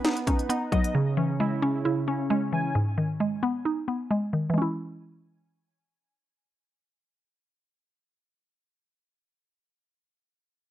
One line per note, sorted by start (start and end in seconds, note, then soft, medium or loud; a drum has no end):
0.00 0.27 B2 medium
0.00 0.50 F#3 medium
0.00 0.48 B3 medium
0.00 0.26 C#4 loud
0.00 0.26 D#4 medium
0.00 0.95 B4 medium
0.05 0.95 B3 medium
0.05 0.95 D#4 medium
0.05 snare loud
0.05 closed hi-hat medium
0.17 closed hi-hat medium
0.27 0.95 C#4 medium
0.27 0.48 D#4 medium
0.27 kick medium
0.27 closed hi-hat medium
0.39 closed hi-hat medium
0.49 0.95 B3 medium
0.49 0.95 D#4 medium
0.49 closed hi-hat medium
0.72 0.95 F#3 medium
0.72 0.94 D#5 medium
0.72 kick medium
0.72 closed hi-hat soft
0.84 closed hi-hat medium
0.94 1.61 C#3 medium
0.94 2.07 C#3 medium
1.17 2.30 E3 medium
1.17 2.07 C#4 medium
1.40 2.29 G#3 medium
1.40 2.75 E4 medium
1.62 1.84 C#3 medium
1.62 2.06 C#4 loud
1.85 2.75 C#3 medium
1.85 2.75 E4 medium
2.08 2.75 C#4 medium
2.08 2.29 C#4 medium
2.30 2.75 G#3 loud
2.30 2.75 C#4 medium
2.53 2.75 E3 medium
2.53 2.75 G#5 medium
2.75 3.88 G#2 medium
2.98 4.11 D#3 medium
3.20 4.09 G#3 medium
3.43 3.87 B3 loud
3.65 4.56 D#4 medium
3.88 4.56 B3 medium
4.11 4.52 G#3 medium
4.33 4.56 D#3 medium
4.50 8.84 E3 medium
4.50 8.88 G#3 medium
4.58 8.92 C#4 medium
4.62 8.96 E4 medium